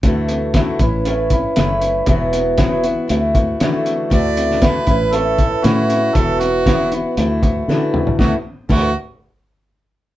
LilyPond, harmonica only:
\new Staff \with { instrumentName = "Harmonica" } { \time 4/4 \key d \major \tempo 4 = 118 r1 | r1 | d''4 b'4 a'4 fis'4 | a'8 fis'4 r2 r8 |
fis'8 r8 fis'8 r2 r8 | }